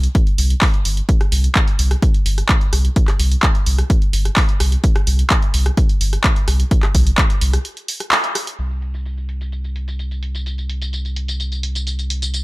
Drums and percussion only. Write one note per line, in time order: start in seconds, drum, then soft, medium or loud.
0.03 closed hi-hat soft
0.15 kick loud
0.15 closed hi-hat soft
0.27 closed hi-hat soft
0.38 open hi-hat loud
0.50 closed hi-hat soft
0.61 kick loud
0.61 clap loud
0.61 open hi-hat medium
0.74 closed hi-hat soft
0.85 open hi-hat loud
0.97 closed hi-hat soft
1.09 kick loud
1.09 closed hi-hat soft
1.21 cross-stick medium
1.21 closed hi-hat soft
1.32 open hi-hat loud
1.44 closed hi-hat soft
1.55 kick loud
1.55 cross-stick soft
1.55 clap loud
1.55 closed hi-hat soft
1.68 closed hi-hat soft
1.79 open hi-hat loud
1.91 cross-stick medium
1.91 closed hi-hat soft
2.02 kick loud
2.02 closed hi-hat medium
2.14 closed hi-hat soft
2.26 open hi-hat loud
2.38 cross-stick soft
2.38 closed hi-hat medium
2.49 kick loud
2.49 clap loud
2.49 closed hi-hat medium
2.61 closed hi-hat soft
2.73 cross-stick medium
2.73 open hi-hat loud
2.85 closed hi-hat soft
2.96 kick loud
2.96 closed hi-hat medium
3.08 cross-stick medium
3.08 clap soft
3.08 closed hi-hat soft
3.20 open hi-hat loud
3.32 closed hi-hat medium
3.43 kick loud
3.43 cross-stick soft
3.43 clap loud
3.43 closed hi-hat medium
3.55 closed hi-hat soft
3.66 open hi-hat loud
3.78 cross-stick medium
3.78 closed hi-hat medium
3.90 kick loud
3.90 closed hi-hat soft
4.02 closed hi-hat soft
4.13 open hi-hat loud
4.25 cross-stick soft
4.25 closed hi-hat medium
4.36 kick loud
4.36 clap loud
4.36 open hi-hat medium
4.49 closed hi-hat soft
4.60 cross-stick medium
4.60 open hi-hat loud
4.72 closed hi-hat medium
4.84 kick loud
4.84 closed hi-hat medium
4.96 cross-stick medium
4.96 closed hi-hat soft
5.07 open hi-hat loud
5.19 closed hi-hat medium
5.30 kick loud
5.30 cross-stick soft
5.30 clap loud
5.30 closed hi-hat medium
5.42 closed hi-hat soft
5.54 open hi-hat loud
5.66 cross-stick medium
5.66 closed hi-hat soft
5.77 kick loud
5.77 closed hi-hat medium
5.89 closed hi-hat soft
6.01 open hi-hat loud
6.13 cross-stick soft
6.13 closed hi-hat medium
6.24 kick loud
6.24 clap loud
6.24 closed hi-hat medium
6.36 closed hi-hat soft
6.48 cross-stick medium
6.48 open hi-hat loud
6.60 closed hi-hat medium
6.71 kick loud
6.71 closed hi-hat medium
6.83 cross-stick medium
6.83 clap soft
6.83 closed hi-hat soft
6.95 kick medium
6.95 open hi-hat loud
7.07 closed hi-hat medium
7.18 kick loud
7.18 cross-stick soft
7.18 clap loud
7.18 closed hi-hat medium
7.30 closed hi-hat soft
7.41 open hi-hat loud
7.53 cross-stick medium
7.53 closed hi-hat medium
7.65 closed hi-hat medium
7.77 closed hi-hat soft
7.88 open hi-hat loud
8.00 cross-stick soft
8.00 closed hi-hat medium
8.12 clap loud
8.12 open hi-hat medium
8.24 closed hi-hat soft
8.35 cross-stick medium
8.35 open hi-hat loud
8.47 closed hi-hat medium
8.59 closed hi-hat medium
8.59 crash medium
8.59 tambourine medium
8.71 closed hi-hat soft
8.71 tambourine soft
8.82 closed hi-hat medium
8.94 closed hi-hat medium
8.94 tambourine medium
9.06 closed hi-hat soft
9.06 tambourine medium
9.17 closed hi-hat soft
9.17 tambourine soft
9.29 closed hi-hat medium
9.41 closed hi-hat soft
9.41 tambourine medium
9.52 closed hi-hat soft
9.52 tambourine medium
9.64 closed hi-hat soft
9.64 tambourine soft
9.76 closed hi-hat medium
9.88 closed hi-hat medium
9.88 tambourine medium
9.99 closed hi-hat soft
9.99 tambourine medium
10.11 closed hi-hat soft
10.11 tambourine soft
10.23 closed hi-hat medium
10.35 closed hi-hat medium
10.35 tambourine medium
10.46 closed hi-hat medium
10.46 tambourine medium
10.58 closed hi-hat soft
10.58 tambourine soft
10.70 closed hi-hat medium
10.82 closed hi-hat soft
10.82 tambourine medium
10.93 closed hi-hat soft
10.93 tambourine soft
11.05 closed hi-hat soft
11.05 tambourine soft
11.16 closed hi-hat loud
11.28 closed hi-hat medium
11.28 tambourine medium
11.40 closed hi-hat soft
11.40 tambourine medium
11.52 closed hi-hat soft
11.52 tambourine soft
11.63 closed hi-hat medium
11.75 closed hi-hat medium
11.75 tambourine medium
11.87 closed hi-hat soft
11.87 tambourine soft
11.99 closed hi-hat soft
11.99 tambourine soft
12.10 closed hi-hat medium
12.22 closed hi-hat medium
12.22 tambourine medium
12.34 closed hi-hat soft
12.34 tambourine medium